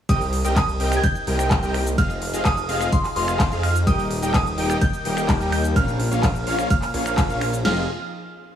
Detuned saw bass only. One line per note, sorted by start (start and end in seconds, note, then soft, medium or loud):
0.09 0.42 C2 medium
0.45 0.78 C2 loud
0.80 0.98 C2 loud
1.27 1.60 C2 loud
1.63 1.96 C2 loud
1.98 2.31 F1 medium
2.33 2.67 F1 loud
2.69 2.87 F1 medium
3.16 3.49 F1 loud
3.52 3.85 F2 loud
3.87 4.20 D#1 loud
4.22 4.56 D#1 loud
4.58 4.76 D#1 medium
5.05 5.38 D#1 medium
5.41 5.74 D#2 loud
5.76 6.09 A#1 loud
6.11 6.44 A#1 loud
6.47 6.64 A#1 medium
6.94 7.27 A#1 loud
7.30 7.63 A#1 loud
7.65 7.87 F1 loud